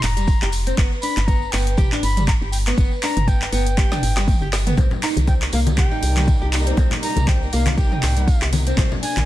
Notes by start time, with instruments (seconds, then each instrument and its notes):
0.03 fm bass F1, flute A#5, clap, open hi-hat, tambourine
0.17 nylon-string guitar G3, closed hi-hat, tambourine
0.27 kick, open hi-hat, tambourine
0.42 fm bass F1, nylon-string guitar G4, clap
0.52 open hi-hat, tambourine
0.66 nylon-string guitar C4, closed hi-hat, tambourine
0.78 fm bass G1, nylon-string guitar B3, kick, clap, closed hi-hat, tambourine
0.92 tambourine
1.02 nylon-string guitar D4, flute B5, open hi-hat, tambourine
1.17 fm bass G1, clap, closed hi-hat, tambourine
1.26 nylon-string guitar B3, flute A#5, kick, closed hi-hat, tambourine
1.42 tambourine
1.51 fm bass G1, nylon-string guitar B3, flute G5, clap, open hi-hat, tambourine
1.67 closed hi-hat, tambourine
1.77 nylon-string guitar G4, kick, closed hi-hat, mid tom, tambourine
1.92 nylon-string guitar D4, clap, tambourine
2.03 fm bass G1, flute B5, open hi-hat, tambourine
2.17 nylon-string guitar G3, closed hi-hat, mid tom, tambourine
2.27 flute A#5, kick, clap, closed hi-hat, tambourine
2.41 fm bass G1, nylon-string guitar G4, tambourine
2.52 flute G5, open hi-hat, tambourine
2.67 nylon-string guitar B3, clap, closed hi-hat, tambourine
2.78 fm bass G1, nylon-string guitar B3, kick, closed hi-hat, tambourine
2.92 tambourine
3.02 nylon-string guitar D4, flute A#5, clap, open hi-hat, tambourine
3.16 fm bass G1, closed hi-hat, mid tom, tambourine
3.28 nylon-string guitar B3, flute G5, kick, closed hi-hat, tambourine
3.42 clap, tambourine
3.52 fm bass G1, nylon-string guitar B3, flute G5, open hi-hat, tambourine
3.67 closed hi-hat, tambourine
3.78 nylon-string guitar G4, kick, clap, closed hi-hat, high tom, tambourine
3.91 nylon-string guitar D4, snare, mid tom, tambourine
4.03 fm bass G1, open hi-hat, tambourine
4.16 nylon-string guitar G3, snare, clap, closed hi-hat
4.28 kick, open hi-hat, mid tom, tambourine
4.41 fm bass G1, nylon-string guitar G4, tambourine
4.53 snare, clap, open hi-hat, tambourine
4.67 nylon-string guitar B3, closed hi-hat, mid tom, tambourine
4.77 fm bass C2, string section C3 G3 A#3 D#4, kick, closed hi-hat, tambourine, high conga, low conga
4.91 tambourine, low conga
5.03 nylon-string guitar D#4, flute A#5, clap, open hi-hat, tambourine
5.16 fm bass C2, closed hi-hat, tambourine, high conga
5.27 nylon-string guitar C4, flute G5, kick, closed hi-hat, tambourine, high conga
5.42 clap, tambourine
5.52 fm bass C2, nylon-string guitar A#3, flute F5, open hi-hat, tambourine
5.67 closed hi-hat, tambourine, high conga
5.77 nylon-string guitar G4, flute G5, kick, clap, closed hi-hat, mid tom, tambourine, high conga
5.91 nylon-string guitar D#4, tambourine
6.03 fm bass C2, open hi-hat, tambourine
6.16 nylon-string guitar G3, clap, closed hi-hat, mid tom, tambourine
6.27 kick, closed hi-hat, tambourine, high conga
6.42 fm bass C2, nylon-string guitar G4, tambourine
6.53 clap, open hi-hat, tambourine
6.66 nylon-string guitar C4, closed hi-hat, tambourine
6.77 fm bass C2, nylon-string guitar C4, kick, closed hi-hat, tambourine, low conga
6.91 clap, tambourine, low conga
7.02 nylon-string guitar D#4, flute A#5, open hi-hat, tambourine
7.16 fm bass C2, closed hi-hat, mid tom, tambourine, high conga
7.27 nylon-string guitar C4, flute G5, kick, clap, closed hi-hat, tambourine, high conga
7.42 tambourine
7.53 fm bass C2, nylon-string guitar A#3, flute F5, open hi-hat, tambourine
7.66 clap, closed hi-hat, tambourine, high conga
7.78 nylon-string guitar G4, flute G5, kick, closed hi-hat, tambourine
7.92 nylon-string guitar D#4, mid tom, tambourine
8.03 fm bass C2, clap, open hi-hat, tambourine
8.16 nylon-string guitar G3, closed hi-hat, tambourine
8.28 kick, open hi-hat, tambourine
8.41 fm bass C2, nylon-string guitar G4, clap, tambourine
8.53 open hi-hat, tambourine, high conga
8.67 nylon-string guitar C4, closed hi-hat, tambourine
8.77 fm bass A#1, string section A#3 D4, nylon-string guitar C4, kick, clap, closed hi-hat, tambourine, high conga, low conga
8.92 tambourine, low conga
9.03 nylon-string guitar D4, flute G#5, open hi-hat, tambourine
9.17 fm bass A#1, clap, closed hi-hat, tambourine, high conga